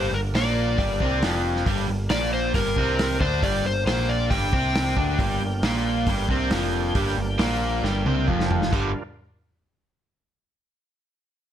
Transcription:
Already playing: G1 G2 G3 A#3 D4 A#4 C5
0.11 G1 G2 A#4
0.34 A#1 A#2 A#3 D5, snare, open hi-hat
0.78 G1 G2 G3, kick, open hi-hat
1.00 C2 C3 C4, kick
1.22 F1 F2 F3, snare, open hi-hat
1.56 snare
1.65 G1 G2 G3 A#3 D4 A#4, kick, open hi-hat
1.88 G1 G2
2.10 A#1 A#2 A#3 D5, snare, open hi-hat
2.34 C5
2.54 G1 G2 G3 A#4, kick, open hi-hat
2.76 C2 C3 C4, kick
2.99 snare, open hi-hat
3.20 D2 D3 D4 C5, kick
3.43 G1 G2 G3 D5, kick, open hi-hat
3.64 G1 G2 C5
3.86 A#1 A#2 A#3 C5, snare, open hi-hat
4.09 D5
4.30 G1 G2 G3 G5, kick, open hi-hat
4.53 C2 C3 C4, kick
4.75 snare, open hi-hat
4.96 D2 D3 D4, kick
5.18 G1 G2 G3 A#3 D4 A#4, kick, open hi-hat
5.40 G1 G2
5.63 A#1 A#2 A#3, snare, open hi-hat
6.07 G1 G2 G3, kick, open hi-hat
6.29 C2 C3 C4, kick
6.51 F1 F2 F3, snare, open hi-hat
6.95 G1 G2 G3, kick, open hi-hat
7.17 G1 G2
7.38 A#1 A#2 A#3, snare, open hi-hat
7.83 G1 G2 G3, snare
8.05 C2 C3 C4, mid tom
8.27 F1 F2 F3, kick
8.40 snare
8.51 floor tom
8.62 snare
8.71 G1 G2 D3 G3 D4 F4 A#4, kick, crash

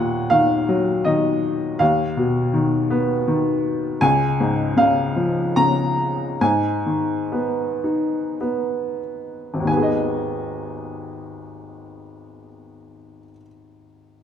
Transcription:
Already playing: D#2 A#2 F#5
0.30 D#3 F5
0.69 F#3
1.05 D#3 D#5
1.79 D#2 F5
2.17 B2
2.54 D#3
2.90 B3
3.28 D#3
4.01 C#2 G#5
4.40 G#2
4.77 C#3 F5
5.16 F3
5.56 C#3 A#5
6.41 G#2 G#5
6.86 D#3
7.32 B3
7.84 D#4
8.41 B3
9.54 G#1
9.60 D#2
9.65 D#3 G#5
9.71 B3
9.77 G#4
9.83 D#5

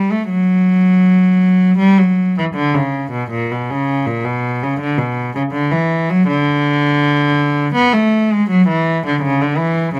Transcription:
0.11 A3
0.29 F#3
1.78 G3
1.98 F#3
2.38 E3
2.55 D3
2.74 C#3
3.12 B2
3.31 A#2
3.51 B2
3.70 C#3
4.06 A#2
4.25 B2
4.63 C#3
4.80 D3
4.98 B2
5.35 C#3
5.52 D3
5.71 E3
6.10 F#3
6.28 D3
7.75 B3
7.93 A3
8.33 G#3
8.50 F#3
8.68 E3
9.07 D3
9.22 C#3
9.42 D3
9.58 E3
9.95 C#3

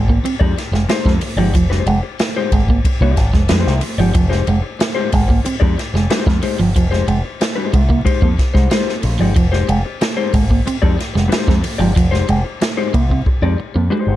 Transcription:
Already playing: G#1
0.08 A#3, muted clean electric guitar stroke, kick
0.23 C4, muted picked electric bass stroke, muted clean electric guitar stroke, ride bell
0.40 F2 G#3 D#4 G4 D5, kick
0.56 muted clean electric guitar stroke, snare, ride bell
0.72 F1 G#3, muted clean electric guitar stroke, snare
0.89 G#3 D#4 G4 C5, snare, ride bell
1.05 F2 G#3, kick, snare
1.21 muted clean electric guitar stroke, open hi-hat, ride bell
1.36 G1 F3 G#3 D#4 G4 D5
1.54 F1 F3, muted clean electric guitar stroke, kick, hi-hat pedal, ride bell
1.70 G#3 D#4 G4 C5, muted clean electric guitar stroke, snare
1.86 F1 G#3, muted clean electric guitar stroke, ride bell
2.03 muted clean electric guitar stroke
2.19 muted clean electric guitar stroke, snare, ride bell
2.36 G#3 D#4 G4 C5
2.52 G#1 G#3, muted clean electric guitar stroke, kick, ride bell
2.68 A#3, muted clean electric guitar stroke, kick
2.85 muted clean electric guitar stroke, kick, ride bell
3.01 C2 G#3 A#3 D#4 G4 D5, kick
3.17 G#1, muted clean electric guitar stroke, kick, snare, ride bell
3.33 F1 G#3, muted clean electric guitar stroke, kick, snare
3.49 F2 G#3 D#4 G4 C5, snare, ride bell
3.67 C2, snare
3.81 muted clean electric guitar stroke, open hi-hat, ride bell
3.98 G1 F3 G#3 D#4 G4 D5
4.14 F1 F3, muted clean electric guitar stroke, kick, hi-hat pedal, ride bell
4.29 G#3 D#4 G4 C5, muted clean electric guitar stroke, snare
4.47 F1 G#3, muted clean electric guitar stroke, ride bell
4.62 muted clean electric guitar stroke
4.79 muted clean electric guitar stroke, snare, ride bell
4.95 G#3 D#4 G4 C5
5.12 G#1 G#3, muted clean electric guitar stroke, kick, open hi-hat, ride bell
5.28 A#3, muted clean electric guitar stroke, kick
5.44 C4, muted clean electric guitar stroke, muted picked electric bass stroke, hi-hat pedal, ride bell
5.60 F2 G#3 D#4 G4 D5, kick
5.77 muted clean electric guitar stroke, snare, ride bell
5.94 F1 G#3, muted clean electric guitar stroke, snare
6.10 G#3 D#4 G4 C5, snare, ride bell
6.26 F2 G#3, muted clean electric guitar stroke, kick, snare
6.42 G#3 D#4 G4 C5, muted clean electric guitar stroke, open hi-hat, ride bell
6.59 G1 F3, muted clean electric guitar stroke
6.76 F1 F3, muted clean electric guitar stroke, kick, hi-hat pedal, ride bell
6.91 G#3 D#4 G4 C5, muted clean electric guitar stroke, snare
7.07 F1 G#3, muted clean electric guitar stroke, ride bell
7.24 muted clean electric guitar stroke
7.40 muted clean electric guitar stroke, snare, ride bell
7.56 G#3 D#4 G4 C5
7.73 C2 G#3, muted clean electric guitar stroke, kick, ride bell
7.88 A#3, muted clean electric guitar stroke, kick
8.05 G#3 D#4 G4 C5, muted picked electric bass stroke, kick, ride bell
8.22 F2 A#3, kick
8.38 muted clean electric guitar stroke, kick, snare, ride bell
8.54 C2 G#3 D#4 G4 C5, kick, snare
8.70 G#3 D#4 G4 C5, snare, ride bell
8.89 snare
9.03 A#1, muted clean electric guitar stroke, open hi-hat, ride bell
9.19 G1 F3 G#3 D#4 G4 D5
9.36 F1 F3, muted clean electric guitar stroke, kick, hi-hat pedal, ride bell
9.52 G#3 D#4 G4 C5, muted clean electric guitar stroke, snare
9.69 F1 G#3, muted clean electric guitar stroke, ride bell
9.85 muted clean electric guitar stroke
10.01 muted clean electric guitar stroke, snare, ride bell
10.17 G#3 D#4 G4 C5
10.33 G#1 G#3, muted clean electric guitar stroke, kick, open hi-hat, ride bell
10.50 A#3, muted clean electric guitar stroke, kick
10.66 C4, muted clean electric guitar stroke, muted picked electric bass stroke, hi-hat pedal, ride bell
10.82 F2 G#3 D#4 G4 D5, kick
10.98 muted clean electric guitar stroke, snare, ride bell
11.13 F1 G#3, muted clean electric guitar stroke, snare
11.28 G#3 D#4 G4 C5
11.32 snare, ride bell
11.48 F2 G#3, kick, snare
11.62 muted clean electric guitar stroke, open hi-hat, ride bell
11.78 G1 F3 G#3 D#4 G4 D5
11.94 F1 F3, muted clean electric guitar stroke, kick, hi-hat pedal, ride bell
12.11 G#3 D#4 G4 C5, muted clean electric guitar stroke, snare
12.28 F1 G#3, muted clean electric guitar stroke, ride bell
12.44 muted clean electric guitar stroke
12.61 muted clean electric guitar stroke, snare, ride bell
12.77 G#3 D#4 G4 C5
12.94 C2 A#3, muted clean electric guitar stroke, kick, ride bell
13.10 C4, muted clean electric guitar stroke, kick
13.26 muted clean electric guitar stroke, kick
13.42 F2 G#3 C4 D#4 G4 D5
13.58 muted clean electric guitar stroke
13.74 F2 A#3, muted clean electric guitar stroke
13.90 G#3 D#4 G4 C5
14.07 G1

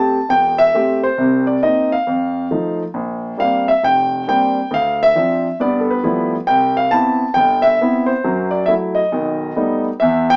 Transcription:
Already playing: A3 C4 G4 A5
0.29 E1 G5
0.58 E5
0.74 A3 C4 G4
1.03 C5
1.18 C2 C3
1.47 D5
1.62 A#3 C4 D#4 D#5
1.92 F5
2.07 F2
2.51 F3 A3 D#4
2.94 A#1
3.37 G3 A#3 C4 D4 F5
3.68 E5
3.83 F1 G5
4.27 G3 A#3 C4 D4 G5
4.71 D2 F5
5.03 E5
5.15 F3 C4 D4
5.60 G2 B3 D5
5.80 A4
5.91 B4
6.03 F3 G3 A3 B3 E4
6.47 C2 G5
6.77 F5
6.91 B3 C4 E4 A5
7.34 G1 G5
7.62 E5
7.81 B3 C4 E4
8.06 C5
8.24 F#2 F#3
8.51 D5
8.66 F#3 A3 E4 E5
8.95 D#5
9.12 B1 D#3
9.56 G3 A3 B3 D#4
10.00 E2 E5
10.30 G5

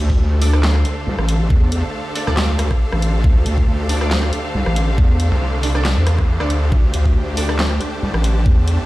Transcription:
Already playing: D3 A3 D4 G4 A4 C5
0.00 D2
0.10 kick
0.20 D2
0.42 D4 A4 D5, open hi-hat
0.53 D4 A4 D5, cross-stick
0.60 F5, snare, clap
0.75 cross-stick
0.85 closed hi-hat
1.07 C2
1.19 A1, cross-stick
1.29 closed hi-hat
1.50 E2, kick
1.72 closed hi-hat
2.15 D4 A4 D5, open hi-hat
2.27 D2 D4 A4 D5, cross-stick
2.37 snare, clap
2.59 cross-stick, closed hi-hat
2.71 kick, cross-stick
2.92 A1, cross-stick
3.02 closed hi-hat
3.24 D2, kick
3.46 D2, closed hi-hat
3.58 kick
3.68 D2
3.89 D4 A4 D5, open hi-hat
4.01 D4 A4 D5, cross-stick
4.11 snare, clap
4.23 cross-stick
4.33 closed hi-hat
4.55 C2
4.66 A1, cross-stick
4.76 closed hi-hat
4.98 E2, kick
5.20 closed hi-hat
5.32 C2
5.63 D4 A4 D5, open hi-hat
5.75 D4 A4 D5, cross-stick
5.85 snare, clap
5.97 E2
6.07 cross-stick, closed hi-hat
6.18 kick, cross-stick
6.40 D2 D4 A4 D5, cross-stick
6.50 closed hi-hat
6.72 D2 G4, kick
6.94 D2, closed hi-hat
7.06 kick
7.15 D2
7.37 D4 A4 D5, open hi-hat
7.49 D4 A4 D5, cross-stick
7.56 A5, snare, clap
7.71 cross-stick
7.81 closed hi-hat
8.02 C2
8.14 A1, cross-stick
8.24 closed hi-hat
8.46 E2, kick
8.68 closed hi-hat

